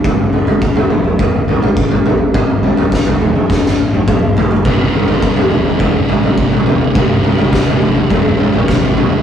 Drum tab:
SD |----------------|----o---oo------|----------------|----o-------o---|
T1 |----------------|-----------o----|----------------|----------------|
T2 |------oo------o-|------oo----o---|------oo------o-|------oo----o-o-|
FT |o-oo-o--o-oo-oo-|o-oo-o--------oo|o-oo-o--o-oo-oo-|o-oo-o--o-oo-oo-|
BD |o---o---o---o---|o---o---o---o---|o---o---o---o---|o---o---o---o---|